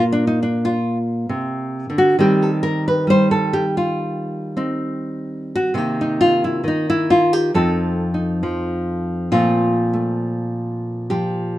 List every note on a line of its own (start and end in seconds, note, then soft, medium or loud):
0.00 1.29 A#2 medium
0.00 2.19 A#3 medium
0.12 0.27 D4 medium
0.27 0.38 D#4 medium
0.43 0.71 D4 medium
0.65 0.97 F4 medium
1.29 1.89 C3 medium
1.90 2.18 D3 medium
1.98 2.15 F#4 loud
2.19 5.71 D#3 medium
2.19 3.06 G3 medium
2.19 4.56 C4 soft
2.19 2.49 G4 medium
2.42 2.62 A4 medium
2.63 2.85 A#4 medium
2.88 3.05 B4 medium
3.07 5.71 G3 medium
3.07 3.31 C5 loud
3.31 3.64 A4 medium
3.53 3.75 G4 medium
3.77 4.68 F4 medium
4.57 5.75 C4 soft
4.57 5.55 D#4 medium
5.55 5.72 F#4 medium
5.74 6.63 C3 medium
5.74 6.62 D#3 soft
5.74 7.50 A#3 soft
5.74 6.06 G4 loud
6.01 6.33 D#4 medium
6.21 6.42 F4 loud
6.44 6.61 E4 medium
6.64 7.53 D#3 medium
6.68 6.89 D#4 medium
6.90 7.22 E4 medium
7.10 7.33 F4 loud
7.33 7.50 G4 medium
7.54 9.32 F2 medium
7.54 8.42 F3 soft
7.54 9.29 C4 soft
7.54 8.13 D#4 soft
7.54 9.03 A4 medium
8.14 9.29 D#4 soft
8.43 9.28 F3 medium
9.32 11.59 A#2 medium
9.32 11.10 F3 soft
9.32 9.92 A3 soft
9.32 11.59 C4 soft
9.32 11.10 F4 medium
9.93 11.59 A3 soft
11.10 11.59 F3 medium
11.10 11.59 G4 medium